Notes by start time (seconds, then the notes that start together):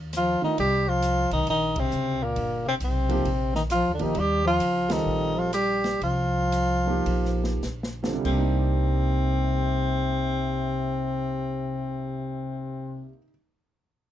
Already playing: D#2
0.13 F3, cross-stick, hi-hat pedal, ride
0.17 F4
0.42 D#3 A3 D4 D#4 F4, muted upright bass stroke
0.58 C2 G3 G4, ride
0.88 F3 F4
1.02 hi-hat pedal, ride
1.31 B1 D#3 D#4, ride
1.47 A#1 D#3 D#4, ride
1.76 C3 C4, kick, ride
1.91 C#2, hi-hat pedal
2.22 A#2 A#3
2.36 G1, ride
2.67 C3 C4
2.80 B1 C3 C4, hi-hat pedal, ride
3.09 F3 A#3 D#4 G4, ride
3.25 A#1, ride
3.55 D#3 D#4, snare
3.70 F3 F4, cross-stick, hi-hat pedal, ride
3.85 D#2
3.93 D3 D4
3.99 A#1 D#3 F3 A#3 D#4 G4, ride
4.15 D#2 G3, ride
4.20 G4
4.45 F3 F4
4.60 C#2, hi-hat pedal, ride
4.88 D#3 G3 C4 F4 A4, snare, ride
4.92 D#4
5.06 A#1
5.36 F3 F4
5.53 G3 G4, cross-stick, hi-hat pedal, ride
5.84 snare, ride
6.01 C2 F3 F4, ride
6.52 hi-hat pedal, ride
6.86 F3 A#3 D#4 G4
7.06 A#1, ride
7.25 snare
7.44 snare
7.63 A#1, snare, hi-hat pedal
7.83 snare
8.03 D3 G3 C4 F4 A4, snare
8.13 C3
8.19 G3
8.25 C2 C3 A#3 C4, kick, crash
8.32 D4
8.38 D#4